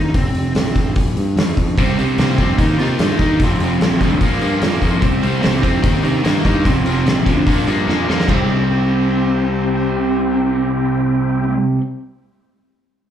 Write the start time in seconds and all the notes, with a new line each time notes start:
Already playing: D#2 D#4
0.14 F1 C4, kick, open hi-hat
0.34 F1, open hi-hat
0.55 A#1, snare, open hi-hat
0.75 A1, kick, snare, open hi-hat
0.96 A#1, kick, open hi-hat
1.17 G2, open hi-hat
1.36 F2, snare, open hi-hat
1.57 F2, kick, open hi-hat
1.78 C2 C3 G3 C4 E4 G4, kick, open hi-hat
1.99 C2 C3 G3 C4, open hi-hat
2.18 C2 C3 G3 A#3 C4, snare, open hi-hat
2.38 F2 C3 G3 C4, kick, open hi-hat
2.57 D#2 D#3 A#3 D#4 G4, kick, open hi-hat
2.78 C3 D#3 A#3 F4, open hi-hat
2.82 D#4
2.99 G2 D#3 A#3 D#4, snare, open hi-hat
3.19 D#2 D#3 A#3 D#4, kick, open hi-hat
3.37 F1 A3 C4 F4, kick, open hi-hat
3.44 F2 C3 F3
3.59 F1, open hi-hat
3.63 F2 C3 F3
3.80 A#1 F2, snare, open hi-hat
3.84 C3 F3
4.01 D2 F2 C3 F3, kick, open hi-hat
4.21 A#1 A#2 F3 A#3 D4 F4, kick, open hi-hat
4.41 G2 A#2 F3 A#3, open hi-hat
4.62 F2 A#2 F3 A#3, snare, open hi-hat
4.82 F2 A#2 F3 A#3, kick, open hi-hat
5.01 C2 C3 G3 C4 E4 G4, kick, open hi-hat
5.22 C2 C3 G3 C4, open hi-hat
5.40 C3 G3 A#3 C4, snare, open hi-hat
5.45 C2
5.62 F2 C3 G3 C4, kick, open hi-hat
5.82 D#2 D#3 A#3 D#4, kick, open hi-hat
5.86 D#4 G4
6.03 C3 D#3 A#3 D#4, open hi-hat
6.23 G2 D#3 A#3 D#4, snare, open hi-hat
6.45 G2 D#3 A#3 D#4, kick, open hi-hat
6.65 F1 F2 C3 F3 A3 C4 F4, kick, open hi-hat
6.86 F1 F2 C3 F3, open hi-hat
6.93 C4
7.05 A#1 F2 C3 F3, snare, open hi-hat
7.25 D2 F2 C3 F3 D4, kick, open hi-hat
7.46 A#1 A#2 F3 A#3 D4 F4, kick, open hi-hat
7.67 G2 A#2 F3 A#3, open hi-hat
7.88 F2 A#2 F3 A#3, snare
8.09 F2 A#2 F3 A#3, snare
8.20 snare
8.26 C2 C3 C4 E4 G4, kick, china
8.31 G3 C4